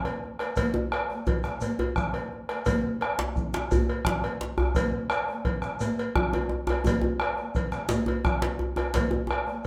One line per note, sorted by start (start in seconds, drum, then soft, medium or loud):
0.05 bombo rim soft
0.05 cowbell soft
0.05 djembe tone soft
0.23 djembe slap soft
0.39 bombo rim medium
0.39 cowbell medium
0.39 djembe slap medium
0.56 bombo low medium
0.56 cowbell medium
0.56 djembe tone medium
0.56 djembe bass medium
0.56 shekere medium
0.74 djembe slap soft
0.74 djembe tone medium
0.92 bombo rim medium
0.92 cowbell soft
1.10 bombo rim soft
1.10 djembe tone medium
1.26 bombo low medium
1.26 cowbell medium
1.26 djembe tone medium
1.26 shekere soft
1.44 bombo rim medium
1.44 djembe slap medium
1.44 shekere soft
1.61 cowbell soft
1.61 djembe tone medium
1.61 djembe bass medium
1.61 shekere medium
1.79 cowbell soft
1.79 djembe slap soft
1.79 djembe tone medium
1.96 bombo rim medium
1.96 bombo low medium
1.96 shekere soft
2.13 bombo rim soft
2.13 cowbell soft
2.13 djembe tone medium
2.33 djembe slap soft
2.49 bombo rim medium
2.49 cowbell soft
2.49 djembe slap medium
2.66 bombo low medium
2.66 cowbell medium
2.66 djembe tone medium
2.66 djembe bass medium
2.66 shekere medium
3.01 bombo rim medium
3.01 cowbell soft
3.19 bombo rim soft
3.19 djembe slap loud
3.19 djembe tone medium
3.36 bombo low medium
3.36 shekere soft
3.54 bombo rim medium
3.54 djembe slap medium
3.54 shekere soft
3.71 cowbell soft
3.71 djembe tone medium
3.71 djembe bass medium
3.71 shekere medium
3.89 cowbell medium
3.89 djembe slap soft
4.05 bombo rim loud
4.05 bombo low loud
4.05 djembe slap loud
4.05 shekere soft
4.23 bombo rim soft
4.23 cowbell medium
4.23 djembe tone soft
4.41 djembe slap medium
4.41 djembe slap soft
4.58 bombo rim medium
4.58 djembe slap medium
4.58 djembe bass medium
4.75 bombo rim soft
4.75 bombo low loud
4.75 cowbell medium
4.75 djembe tone medium
4.75 djembe bass medium
4.75 shekere medium
5.10 bombo rim loud
5.10 cowbell soft
5.10 shekere soft
5.28 bombo rim soft
5.28 djembe tone medium
5.45 bombo rim soft
5.45 bombo low medium
5.45 cowbell medium
5.62 bombo rim medium
5.62 djembe slap medium
5.62 shekere soft
5.80 bombo rim soft
5.80 cowbell medium
5.80 djembe tone medium
5.80 djembe bass medium
5.80 shekere medium
5.98 cowbell medium
5.98 djembe slap soft
5.98 shekere soft
6.16 bombo rim loud
6.16 bombo low loud
6.16 djembe tone loud
6.33 bombo rim soft
6.33 cowbell soft
6.33 djembe tone medium
6.49 djembe slap soft
6.49 djembe tone medium
6.67 bombo rim medium
6.67 cowbell medium
6.67 djembe slap medium
6.67 djembe tone loud
6.84 bombo low loud
6.84 cowbell medium
6.84 djembe tone medium
6.84 djembe bass medium
6.84 shekere medium
7.02 djembe slap soft
7.02 djembe tone medium
7.20 bombo rim loud
7.20 cowbell soft
7.37 bombo rim soft
7.37 djembe tone medium
7.55 bombo low loud
7.55 cowbell medium
7.55 shekere soft
7.72 bombo rim medium
7.72 djembe slap medium
7.72 shekere soft
7.89 cowbell soft
7.89 djembe slap loud
7.89 djembe tone medium
7.89 djembe bass medium
7.89 shekere medium
8.06 cowbell soft
8.06 djembe tone medium
8.24 bombo rim medium
8.24 bombo low loud
8.24 djembe tone medium
8.24 shekere soft
8.42 bombo rim soft
8.42 cowbell medium
8.42 djembe slap loud
8.42 djembe tone medium
8.59 djembe tone medium
8.76 bombo rim medium
8.76 cowbell medium
8.76 djembe slap medium
8.76 djembe tone medium
8.94 bombo low medium
8.94 cowbell medium
8.94 djembe slap loud
8.94 djembe tone medium
8.94 djembe bass medium
8.94 shekere medium
9.11 djembe slap soft
9.11 djembe tone medium
9.27 bombo rim medium
9.27 cowbell soft
9.27 djembe tone medium
9.47 bombo rim soft
9.47 djembe tone medium